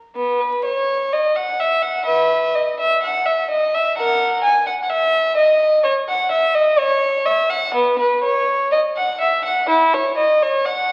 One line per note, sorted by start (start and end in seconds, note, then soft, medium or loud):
0.15 0.39 B3 medium
0.40 0.64 B4 medium
0.64 1.10 C#5 medium
1.12 1.35 D#5 medium
1.36 1.59 F#5 medium
1.59 1.82 E5 medium
1.82 2.06 F#5 medium
2.05 2.50 B4 medium
2.05 2.52 E5 medium
2.55 2.78 D#5 medium
2.79 3.02 E5 medium
3.03 3.25 F#5 medium
3.25 3.49 E5 medium
3.50 3.72 D#5 medium
3.74 3.96 E5 medium
3.97 4.40 A#4 medium
3.97 4.42 F#5 medium
4.44 4.66 G#5 medium
4.67 4.73 F#5 medium
4.83 4.89 F#5 medium
4.89 5.36 E5 medium
5.37 5.82 D#5 medium
5.84 5.92 C#5 medium
6.08 6.30 F#5 medium
6.31 6.53 E5 medium
6.54 6.77 D#5 medium
6.78 7.25 C#5 medium
7.25 7.49 E5 medium
7.49 7.74 F#5 medium
7.74 7.98 B3 medium
7.99 8.23 B4 medium
8.23 8.70 C#5 medium
8.72 8.80 D#5 medium
8.96 9.19 F#5 medium
9.20 9.43 E5 medium
9.45 9.67 F#5 medium
9.69 9.91 E4 medium
9.94 10.16 C#5 medium
10.17 10.40 D#5 medium
10.42 10.65 C#5 medium
10.65 10.92 F#5 medium